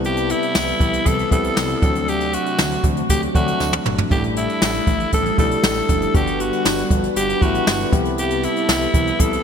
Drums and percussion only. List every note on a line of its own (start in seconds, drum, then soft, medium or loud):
0.04 closed hi-hat medium
0.17 closed hi-hat medium
0.30 closed hi-hat medium
0.43 closed hi-hat medium
0.55 snare loud
0.55 tambourine medium
0.68 closed hi-hat soft
0.80 kick loud
0.80 closed hi-hat medium
0.93 closed hi-hat medium
1.06 kick medium
1.06 closed hi-hat loud
1.19 closed hi-hat medium
1.31 kick medium
1.31 closed hi-hat medium
1.44 closed hi-hat medium
1.57 snare loud
1.57 tambourine medium
1.69 closed hi-hat soft
1.82 kick loud
1.82 closed hi-hat medium
1.95 closed hi-hat medium
2.08 closed hi-hat medium
2.20 closed hi-hat soft
2.33 closed hi-hat medium
2.46 closed hi-hat soft
2.59 snare loud
2.59 tambourine medium
2.71 closed hi-hat soft
2.84 kick medium
2.84 closed hi-hat medium
2.97 closed hi-hat soft
3.09 kick medium
3.09 closed hi-hat loud
3.22 closed hi-hat medium
3.35 kick medium
3.35 closed hi-hat medium
3.48 closed hi-hat medium
3.60 snare medium
3.60 tambourine medium
3.73 high tom medium
3.86 mid tom loud
3.98 floor tom medium
4.11 kick loud
4.11 closed hi-hat medium
4.24 closed hi-hat soft
4.36 closed hi-hat medium
4.49 closed hi-hat medium
4.62 snare loud
4.62 tambourine medium
4.75 closed hi-hat soft
4.87 kick loud
4.87 closed hi-hat medium
5.00 closed hi-hat soft
5.12 kick medium
5.12 closed hi-hat loud
5.26 closed hi-hat medium
5.38 kick medium
5.38 closed hi-hat medium
5.51 closed hi-hat medium
5.63 snare loud
5.63 tambourine medium
5.76 closed hi-hat soft
5.89 kick loud
5.89 closed hi-hat medium
6.02 closed hi-hat medium
6.14 kick loud
6.14 closed hi-hat medium
6.27 closed hi-hat soft
6.40 closed hi-hat medium
6.53 closed hi-hat soft
6.65 snare loud
6.65 tambourine medium
6.78 closed hi-hat soft
6.90 kick loud
6.90 closed hi-hat medium
7.03 closed hi-hat medium
7.16 closed hi-hat loud
7.29 closed hi-hat medium
7.42 kick medium
7.42 closed hi-hat medium
7.55 closed hi-hat medium
7.67 snare loud
7.67 tambourine medium
7.80 closed hi-hat soft
7.93 kick loud
7.93 closed hi-hat medium
8.05 closed hi-hat medium
8.18 closed hi-hat medium
8.30 closed hi-hat soft
8.43 closed hi-hat medium
8.56 closed hi-hat medium
8.69 snare loud
8.69 tambourine medium
8.82 closed hi-hat soft
8.94 kick loud
8.94 closed hi-hat medium
9.07 closed hi-hat soft
9.20 kick medium
9.20 closed hi-hat loud
9.33 closed hi-hat medium